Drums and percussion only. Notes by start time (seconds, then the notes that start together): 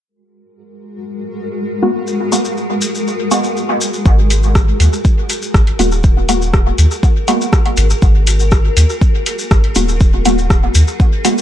2.07 maracas
2.32 maracas
2.45 maracas
2.57 maracas
2.81 maracas
2.95 maracas
3.08 maracas
3.31 maracas
3.43 maracas
3.57 maracas
3.81 maracas
3.94 maracas
4.06 kick, maracas
4.30 closed hi-hat, maracas
4.43 maracas
4.55 kick, cross-stick, maracas
4.80 closed hi-hat, maracas
4.93 maracas
5.05 kick, maracas
5.30 closed hi-hat, maracas
5.42 maracas
5.54 kick, cross-stick, maracas
5.67 closed hi-hat
5.79 closed hi-hat, maracas
5.92 maracas
6.03 kick, maracas
6.29 closed hi-hat, maracas
6.42 maracas
6.54 kick, cross-stick, maracas
6.78 closed hi-hat, maracas
6.91 maracas
7.03 kick, maracas
7.28 closed hi-hat, maracas
7.41 maracas
7.53 kick, cross-stick, maracas
7.66 closed hi-hat
7.77 closed hi-hat, maracas
7.90 maracas
8.02 kick, maracas
8.27 closed hi-hat, maracas
8.40 maracas
8.51 kick, cross-stick, maracas
8.77 closed hi-hat, maracas
8.90 maracas
9.01 kick, maracas
9.26 closed hi-hat, maracas
9.39 maracas
9.51 kick, cross-stick, maracas
9.64 closed hi-hat
9.75 closed hi-hat, maracas
9.89 maracas
10.00 kick, maracas
10.25 closed hi-hat, maracas
10.38 maracas
10.50 kick, cross-stick, maracas
10.75 closed hi-hat, maracas
10.88 maracas
11.00 kick, maracas
11.25 closed hi-hat, maracas
11.38 maracas